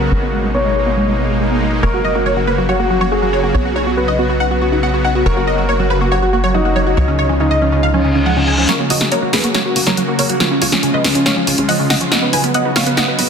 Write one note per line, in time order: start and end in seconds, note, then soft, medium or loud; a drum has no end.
0.00 0.08 C#3 medium
0.00 0.08 F#3 medium
0.00 0.08 B3 medium
0.00 0.08 F#4 medium
0.00 0.46 A#4 medium
0.12 1.81 G#1 medium
0.12 0.27 B2 medium
0.12 0.27 G#3 medium
0.12 0.17 G#3 medium
0.12 0.27 A#3 medium
0.12 0.27 D#4 medium
0.22 0.27 B3 medium
0.33 0.48 B2 medium
0.33 0.40 G#3 medium
0.33 0.48 G#3 medium
0.33 0.48 A#3 medium
0.33 0.48 D#4 medium
0.44 0.49 G#3 medium
0.54 0.70 B2 medium
0.54 0.70 G#3 medium
0.54 0.70 A#3 medium
0.54 0.59 B3 medium
0.54 0.70 D#4 medium
0.54 1.74 C#5 medium
0.65 0.73 G#3 medium
0.76 0.91 B2 medium
0.76 0.81 G#3 medium
0.76 0.91 G#3 medium
0.76 0.91 A#3 medium
0.76 0.91 D#4 medium
0.87 0.92 B3 medium
0.97 1.05 G#3 medium
1.08 1.16 B2 medium
1.08 1.13 G#3 medium
1.08 1.16 G#3 medium
1.08 1.16 A#3 medium
1.08 1.16 D#4 medium
1.19 1.26 B2 medium
1.19 1.26 G#3 medium
1.19 1.26 A#3 medium
1.19 1.24 B3 medium
1.19 1.26 D#4 medium
1.29 1.37 B2 medium
1.29 1.37 G#3 medium
1.29 1.37 A#3 medium
1.29 1.37 D#4 medium
1.40 1.48 B2 medium
1.40 1.48 G#3 medium
1.40 1.45 G#3 medium
1.40 1.48 A#3 medium
1.40 1.48 D#4 medium
1.51 1.66 B2 medium
1.51 1.66 G#3 medium
1.51 1.66 A#3 medium
1.51 1.56 B3 medium
1.51 1.66 D#4 medium
1.62 1.69 G#3 medium
1.72 1.80 B2 medium
1.72 1.80 G#3 medium
1.72 1.77 G#3 medium
1.72 1.80 A#3 medium
1.72 1.80 D#4 medium
1.83 3.52 F#1 medium
1.83 1.98 C#3 medium
1.83 1.98 F#3 medium
1.83 1.88 A#3 medium
1.83 1.98 A#3 medium
1.83 1.98 F#4 medium
1.83 2.60 A#4 medium
1.83 1.92 C#5 loud
1.83 1.92 C#5 medium
1.94 2.01 F#3 medium
1.94 2.03 F#4 medium
2.04 2.19 C#3 medium
2.04 2.09 F#3 medium
2.04 2.19 F#3 medium
2.04 2.19 A#3 medium
2.04 2.19 F#4 medium
2.04 2.14 D#5 medium
2.15 2.20 A#3 medium
2.15 2.24 F#4 medium
2.26 2.41 C#3 medium
2.26 2.41 F#3 medium
2.26 2.33 F#3 medium
2.26 2.41 A#3 medium
2.26 2.41 F#4 medium
2.26 2.35 C#5 medium
2.37 2.42 F#3 medium
2.37 2.46 F#4 medium
2.47 2.62 C#3 medium
2.47 2.62 F#3 medium
2.47 2.62 A#3 medium
2.47 2.52 A#3 medium
2.47 2.62 F#4 medium
2.47 2.56 B4 medium
2.47 2.57 B4 medium
2.58 2.65 F#3 medium
2.58 2.67 F#4 medium
2.69 2.74 F#3 medium
2.69 3.10 F#4 medium
2.69 2.78 C#5 medium
2.79 2.87 C#3 medium
2.79 2.87 F#3 medium
2.79 2.87 A#3 medium
2.79 2.84 A#3 medium
2.79 2.87 F#4 medium
2.79 2.89 F#4 medium
2.90 2.98 C#3 medium
2.90 2.98 F#3 medium
2.90 2.98 A#3 medium
2.90 2.98 F#4 medium
2.90 2.99 F#4 medium
3.01 3.08 C#3 medium
3.01 3.06 F#3 medium
3.01 3.08 F#3 medium
3.01 3.08 A#3 medium
3.01 3.08 F#4 medium
3.01 3.10 C#5 medium
3.12 3.19 C#3 medium
3.12 3.19 F#3 medium
3.12 3.16 A#3 medium
3.12 3.19 A#3 medium
3.12 3.19 F#4 medium
3.12 3.21 F#4 medium
3.12 3.89 G#4 medium
3.22 3.37 C#3 medium
3.22 3.30 F#3 medium
3.22 3.37 F#3 medium
3.22 3.37 A#3 medium
3.22 3.31 F#4 medium
3.22 3.37 F#4 medium
3.33 3.38 F#3 medium
3.33 3.42 C#5 medium
3.44 3.51 C#3 medium
3.44 3.51 F#3 medium
3.44 3.49 A#3 medium
3.44 3.51 A#3 medium
3.44 3.53 F#4 medium
3.44 3.51 F#4 medium
3.44 3.53 F#4 medium
3.54 5.24 B1 medium
3.54 3.69 C#3 medium
3.54 3.69 F#3 medium
3.54 3.69 B3 medium
3.54 3.62 B3 medium
3.54 3.69 F#4 medium
3.54 3.64 C#5 medium
3.65 3.70 B3 medium
3.65 3.74 F#4 medium
3.76 3.91 C#3 medium
3.76 3.91 F#3 medium
3.76 3.91 B3 medium
3.76 3.81 D#4 medium
3.76 3.91 F#4 medium
3.76 3.85 C#5 medium
3.87 3.94 B3 medium
3.87 3.96 F#4 medium
3.97 4.12 C#3 medium
3.97 4.12 F#3 medium
3.97 4.02 B3 medium
3.97 4.12 B3 medium
3.97 4.06 F#4 medium
3.97 4.12 F#4 medium
3.97 4.07 F#4 medium
3.97 5.17 B4 medium
4.08 4.13 D#4 medium
4.08 4.17 D#5 medium
4.19 4.34 C#3 medium
4.19 4.34 F#3 medium
4.19 4.26 B3 medium
4.19 4.34 B3 medium
4.19 4.28 F#4 medium
4.19 4.34 F#4 medium
4.19 4.28 F#4 medium
4.29 4.34 B3 medium
4.29 4.39 F#4 medium
4.40 4.45 D#4 medium
4.40 4.49 F#5 medium
4.51 4.58 C#3 medium
4.51 4.58 F#3 medium
4.51 4.58 B3 medium
4.51 4.60 F#4 medium
4.51 4.58 F#4 medium
4.62 4.69 C#3 medium
4.62 4.69 F#3 medium
4.62 4.66 B3 medium
4.62 4.69 B3 medium
4.62 4.71 F#4 medium
4.62 4.69 F#4 medium
4.62 4.71 F#4 medium
4.72 4.80 C#3 medium
4.72 4.80 F#3 medium
4.72 4.80 B3 medium
4.72 4.77 D#4 medium
4.72 4.81 F#4 medium
4.72 4.80 F#4 medium
4.83 4.91 C#3 medium
4.83 4.91 F#3 medium
4.83 4.90 B3 medium
4.83 4.91 F#4 medium
4.83 4.92 F#5 medium
4.94 5.09 C#3 medium
4.94 5.09 F#3 medium
4.94 5.09 B3 medium
4.94 4.99 B3 medium
4.94 5.03 F#4 medium
4.94 5.09 F#4 medium
4.94 5.03 F#4 medium
5.04 5.09 D#4 medium
5.04 5.14 F#5 medium
5.15 5.23 C#3 medium
5.15 5.23 F#3 medium
5.15 5.23 B3 medium
5.15 5.24 F#4 medium
5.15 5.23 F#4 medium
5.15 5.24 F#4 medium
5.26 6.95 F#1 medium
5.26 5.41 C#3 medium
5.26 5.41 F#3 medium
5.26 5.31 F#3 medium
5.26 5.41 A#3 medium
5.26 5.41 F#4 medium
5.26 6.03 A#4 medium
5.26 5.35 C#5 loud
5.37 5.41 A#3 medium
5.37 5.46 F#4 medium
5.47 5.62 C#3 medium
5.47 5.62 F#3 medium
5.47 5.55 F#3 medium
5.47 5.62 A#3 medium
5.47 5.62 F#4 medium
5.47 5.57 D#5 medium
5.58 5.63 F#3 medium
5.58 5.67 F#4 medium
5.69 5.84 C#3 medium
5.69 5.84 F#3 medium
5.69 5.84 A#3 medium
5.69 5.74 A#3 medium
5.69 5.84 F#4 medium
5.69 5.78 C#5 medium
5.80 5.87 F#3 medium
5.80 5.89 F#4 medium
5.90 6.05 C#3 medium
5.90 6.05 F#3 medium
5.90 5.95 F#3 medium
5.90 6.05 A#3 medium
5.90 6.05 F#4 medium
5.90 5.99 B4 medium
6.01 6.06 A#3 medium
6.01 6.10 F#4 medium
6.12 6.19 F#3 medium
6.12 6.52 F#4 medium
6.12 6.21 C#5 medium
6.22 6.30 C#3 medium
6.22 6.30 F#3 medium
6.22 6.27 F#3 medium
6.22 6.30 A#3 medium
6.22 6.30 F#4 medium
6.22 6.32 F#4 medium
6.33 6.41 C#3 medium
6.33 6.41 F#3 medium
6.33 6.41 A#3 medium
6.33 6.38 A#3 medium
6.33 6.42 F#4 medium
6.33 6.41 F#4 medium
6.33 6.42 F#4 medium
6.44 6.51 C#3 medium
6.44 6.51 F#3 medium
6.44 6.51 A#3 medium
6.44 6.51 F#4 medium
6.44 6.53 C#5 medium
6.54 6.62 C#3 medium
6.54 6.62 F#3 medium
6.54 6.59 F#3 medium
6.54 6.62 A#3 medium
6.54 7.32 D#4 medium
6.54 6.64 F#4 medium
6.54 6.62 F#4 medium
6.65 6.80 C#3 medium
6.65 6.80 F#3 medium
6.65 6.80 A#3 medium
6.65 6.70 A#3 medium
6.65 6.80 F#4 medium
6.65 6.74 F#4 medium
6.76 6.83 F#3 medium
6.76 6.85 C#5 medium
6.86 6.94 C#3 medium
6.86 6.94 F#3 medium
6.86 6.92 F#3 medium
6.86 6.94 A#3 medium
6.86 6.96 F#4 medium
6.86 6.94 F#4 medium
6.97 8.67 C#2 medium
6.97 7.12 C#3 medium
6.97 7.12 F3 medium
6.97 7.02 F3 medium
6.97 7.12 G#3 medium
6.97 7.12 F4 medium
6.97 7.06 C#5 medium
7.08 7.15 C#3 medium
7.08 7.17 C#4 medium
7.19 7.24 C#3 medium
7.19 7.34 C#3 medium
7.19 7.34 F3 medium
7.19 7.34 G#3 medium
7.19 7.34 F4 medium
7.19 7.28 C#5 medium
7.19 7.28 C#5 loud
7.29 7.34 F3 medium
7.29 7.39 C#4 medium
7.40 7.48 C#3 medium
7.40 7.55 C#3 medium
7.40 7.55 F3 medium
7.40 7.55 G#3 medium
7.40 7.49 C#4 medium
7.40 8.60 D#4 medium
7.40 7.55 F4 medium
7.51 7.56 C#3 medium
7.51 7.60 D#5 medium
7.61 7.77 C#3 medium
7.61 7.67 F3 medium
7.61 7.77 F3 medium
7.61 7.77 G#3 medium
7.61 7.71 C#4 medium
7.61 7.77 F4 medium
7.72 7.80 C#3 medium
7.72 7.81 C#4 medium
7.83 7.88 C#3 medium
7.83 7.92 F5 medium
7.83 reverse cymbal medium
7.94 8.01 C#3 medium
7.94 8.01 F3 medium
7.94 7.99 F3 medium
7.94 8.01 G#3 medium
7.94 8.03 C#4 medium
7.94 8.01 F4 medium
8.04 8.12 C#3 medium
8.04 8.12 F3 medium
8.04 8.12 G#3 medium
8.04 8.14 C#4 medium
8.04 8.12 F4 medium
8.15 8.23 C#3 medium
8.15 8.20 C#3 medium
8.15 8.23 F3 medium
8.15 8.23 G#3 medium
8.15 8.24 C#4 medium
8.15 8.23 F4 medium
8.26 8.33 C#3 medium
8.26 8.33 F3 medium
8.26 8.31 F3 medium
8.26 8.33 G#3 medium
8.26 8.33 F4 medium
8.26 8.35 F#5 medium
8.36 8.52 C#3 medium
8.36 8.44 C#3 medium
8.36 8.52 F3 medium
8.36 8.52 G#3 medium
8.36 8.46 C#4 medium
8.36 8.52 F4 medium
8.47 8.52 C#3 medium
8.47 8.56 G#5 medium
8.47 8.57 G#5 medium
8.58 8.65 C#3 medium
8.58 8.65 F3 medium
8.58 8.63 F3 medium
8.58 8.66 G#3 medium
8.58 8.67 C#4 medium
8.58 8.65 F4 medium
8.69 8.84 C#3 medium
8.69 8.84 F#3 medium
8.69 8.74 F#3 medium
8.69 8.84 A#3 medium
8.69 8.84 F#4 medium
8.69 8.78 A#4 medium
8.69 8.78 C#5 loud
8.69 snare soft
8.69 closed hi-hat medium
8.79 8.84 A#3 medium
8.79 8.89 F#4 medium
8.90 9.04 F#1 loud
8.90 9.05 C#3 medium
8.90 9.05 F#3 medium
8.90 8.98 F#3 medium
8.90 9.05 A#3 medium
8.90 9.05 F#4 medium
8.90 8.99 F#4 medium
8.90 8.99 D#5 medium
8.90 open hi-hat loud
9.01 9.06 F#3 medium
9.01 9.10 F#4 medium
9.01 snare soft
9.01 closed hi-hat medium
9.12 9.27 C#3 medium
9.12 9.27 F#3 medium
9.12 9.27 A#3 medium
9.12 9.17 A#3 medium
9.12 9.27 F#4 medium
9.12 9.21 A#4 medium
9.12 9.21 C#5 medium
9.12 closed hi-hat medium
9.22 9.30 F#3 medium
9.22 9.32 F#4 medium
9.33 9.47 F#1 medium
9.33 9.48 C#3 medium
9.33 9.48 F#3 medium
9.33 9.38 F#3 medium
9.33 9.48 A#3 medium
9.33 9.48 F#4 medium
9.33 9.42 G#4 medium
9.33 9.42 B4 medium
9.33 snare soft
9.33 open hi-hat loud
9.44 9.49 A#3 medium
9.44 9.53 F#4 medium
9.44 closed hi-hat medium
9.55 9.62 F#3 medium
9.55 9.64 A#4 medium
9.55 9.64 C#5 medium
9.55 snare soft
9.55 closed hi-hat medium
9.65 9.73 C#3 medium
9.65 9.73 F#3 medium
9.65 9.70 F#3 medium
9.65 9.73 A#3 medium
9.65 9.73 F#4 medium
9.65 9.74 F#4 medium
9.76 9.83 F#1 medium
9.76 9.83 C#3 medium
9.76 9.83 F#3 medium
9.76 9.83 A#3 medium
9.76 9.81 A#3 medium
9.76 9.83 F#4 medium
9.76 9.85 F#4 medium
9.76 open hi-hat loud
9.87 10.00 F#1 loud
9.87 9.94 C#3 medium
9.87 9.94 F#3 medium
9.87 9.94 A#3 medium
9.87 9.94 F#4 medium
9.87 9.96 A#4 medium
9.87 9.96 C#5 medium
9.87 snare soft
9.87 closed hi-hat medium
9.97 10.05 C#3 medium
9.97 10.05 F#3 medium
9.97 10.02 F#3 medium
9.97 10.05 A#3 medium
9.97 10.05 F#4 medium
9.97 10.07 F#4 medium
9.97 closed hi-hat medium
10.08 10.23 C#3 medium
10.08 10.23 F#3 medium
10.08 10.23 A#3 medium
10.08 10.13 A#3 medium
10.08 10.23 F#4 medium
10.08 10.17 F#4 medium
10.19 10.32 F#1 loud
10.19 10.26 F#3 medium
10.19 10.28 A#4 medium
10.19 10.28 C#5 medium
10.19 open hi-hat loud
10.29 10.37 C#3 medium
10.29 10.37 F#3 medium
10.29 10.34 F#3 medium
10.29 10.37 A#3 medium
10.29 10.37 F#4 medium
10.29 10.39 F#4 medium
10.29 closed hi-hat medium
10.40 10.55 C#3 loud
10.40 10.55 F3 medium
10.40 10.45 F3 medium
10.40 10.55 G#3 medium
10.40 10.55 F4 medium
10.40 10.49 F4 medium
10.40 10.49 C#5 medium
10.40 snare soft
10.40 closed hi-hat medium
10.51 10.58 C#3 medium
10.51 10.60 C#4 medium
10.62 10.75 C#2 loud
10.62 10.77 C#3 medium
10.62 10.67 C#3 medium
10.62 10.77 F3 medium
10.62 10.77 G#3 medium
10.62 10.77 F4 medium
10.62 10.71 F4 medium
10.62 10.71 C#5 medium
10.62 open hi-hat loud
10.72 10.77 F3 medium
10.72 10.82 C#4 medium
10.72 snare soft
10.72 closed hi-hat medium
10.83 10.98 C#3 medium
10.83 10.90 C#3 medium
10.83 10.98 F3 medium
10.83 10.98 G#3 medium
10.83 10.92 C#4 medium
10.83 10.98 F4 medium
10.83 closed hi-hat medium
10.94 10.99 C#3 medium
10.94 11.03 B4 medium
10.94 11.03 D#5 medium
11.04 11.18 C#2 medium
11.04 11.19 C#3 medium
11.04 11.19 F3 medium
11.04 11.09 F3 medium
11.04 11.19 G#3 medium
11.04 11.14 C#4 medium
11.04 11.19 F4 medium
11.04 snare medium
11.04 open hi-hat loud
11.15 11.23 C#3 medium
11.15 11.24 C#4 medium
11.15 closed hi-hat medium
11.26 11.31 C#3 medium
11.26 11.35 C#5 medium
11.26 11.35 F5 loud
11.26 snare medium
11.26 closed hi-hat medium
11.36 11.44 C#3 medium
11.36 11.44 F3 medium
11.36 11.41 F3 medium
11.36 11.44 G#3 medium
11.36 11.46 C#4 medium
11.36 11.44 F4 medium
11.47 11.54 C#2 medium
11.47 11.55 C#3 medium
11.47 11.55 F3 medium
11.47 11.55 G#3 medium
11.47 11.56 C#4 medium
11.47 11.55 F4 medium
11.47 open hi-hat loud
11.58 11.72 C#2 loud
11.58 11.65 C#3 medium
11.58 11.63 C#3 medium
11.58 11.65 F3 medium
11.58 11.65 G#3 medium
11.58 11.67 C#4 medium
11.58 11.65 F4 medium
11.58 closed hi-hat medium
11.69 11.76 C#3 medium
11.69 11.76 F3 medium
11.69 11.74 F3 medium
11.69 11.76 G#3 medium
11.69 11.76 F4 medium
11.69 11.78 D#5 medium
11.69 11.78 F#5 medium
11.69 open hi-hat medium
11.79 11.94 C#3 medium
11.79 11.87 C#3 medium
11.79 11.94 F3 medium
11.79 11.94 G#3 medium
11.79 11.89 C#4 medium
11.79 11.95 F4 medium
11.90 12.04 C#2 medium
11.90 11.95 C#3 medium
11.90 11.99 D#5 medium
11.90 11.99 F#5 medium
11.90 snare medium
11.90 open hi-hat loud
12.01 12.08 C#3 medium
12.01 12.06 F3 medium
12.01 12.08 F3 medium
12.01 12.08 G#3 medium
12.01 12.10 C#4 medium
12.01 12.08 F4 medium
12.01 closed hi-hat medium
12.12 12.27 C#3 medium
12.12 12.27 F#3 medium
12.12 12.19 B3 medium
12.12 12.27 B3 medium
12.12 12.27 F#4 loud
12.12 12.21 D#5 medium
12.12 12.21 F#5 medium
12.12 snare medium
12.12 closed hi-hat medium
12.22 12.27 B3 medium
12.22 12.32 B4 medium
12.33 12.47 B1 loud
12.33 12.48 C#3 medium
12.33 12.48 F#3 medium
12.33 12.48 B3 medium
12.33 12.38 D#4 medium
12.33 12.48 F#4 medium
12.33 12.42 B4 medium
12.33 12.42 G#5 medium
12.33 open hi-hat loud
12.44 12.51 B3 medium
12.44 12.53 B4 medium
12.44 closed hi-hat medium
12.54 12.69 C#3 medium
12.54 12.69 F#3 medium
12.54 12.69 B3 medium
12.54 12.59 B3 medium
12.54 12.69 F#4 medium
12.54 12.64 D#5 medium
12.54 12.64 F#5 medium
12.54 closed hi-hat medium
12.65 12.70 D#4 medium
12.65 12.74 B4 medium
12.76 12.90 B1 medium
12.76 12.91 C#3 medium
12.76 12.91 F#3 medium
12.76 12.91 B3 medium
12.76 12.83 B3 medium
12.76 12.91 F#4 medium
12.76 12.85 C#5 medium
12.76 12.85 F5 medium
12.76 snare medium
12.76 open hi-hat loud
12.87 12.92 B3 medium
12.87 12.96 B4 medium
12.87 closed hi-hat medium
12.97 13.02 D#4 medium
12.97 13.06 D#5 medium
12.97 13.06 F#5 medium
12.97 snare medium
12.97 closed hi-hat medium
13.08 13.16 C#3 medium
13.08 13.15 F#3 medium
13.08 13.16 B3 medium
13.08 13.15 B3 medium
13.08 13.15 F#4 medium
13.08 13.17 B4 medium
13.19 13.26 B1 medium
13.19 13.26 C#3 medium
13.19 13.26 F#3 medium
13.19 13.26 B3 medium
13.19 13.24 B3 medium
13.19 13.26 F#4 medium
13.19 13.28 B4 medium
13.19 open hi-hat loud